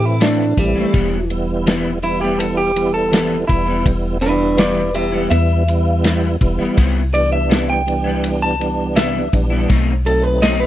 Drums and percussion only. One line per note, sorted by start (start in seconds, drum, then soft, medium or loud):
0.21 snare loud
0.21 ride medium
0.57 kick medium
0.57 ride medium
0.94 kick loud
0.94 ride medium
1.30 ride medium
1.67 snare loud
1.67 ride medium
2.03 ride medium
2.40 ride medium
2.76 ride medium
3.13 snare loud
3.13 ride medium
3.49 kick medium
3.49 ride medium
3.86 kick loud
3.86 ride medium
4.22 ride medium
4.58 snare loud
4.58 ride medium
4.95 ride medium
5.31 ride medium
5.68 ride medium
6.04 snare loud
6.04 ride medium
6.41 kick medium
6.41 ride medium
6.78 kick loud
6.78 ride medium
7.15 ride medium
7.51 snare loud
7.51 ride medium
7.88 ride medium
8.24 ride medium
8.61 ride medium
8.96 snare loud
8.96 ride medium
9.33 kick medium
9.33 ride medium
9.70 kick loud
9.70 ride medium
10.06 ride medium
10.42 snare loud
10.42 ride medium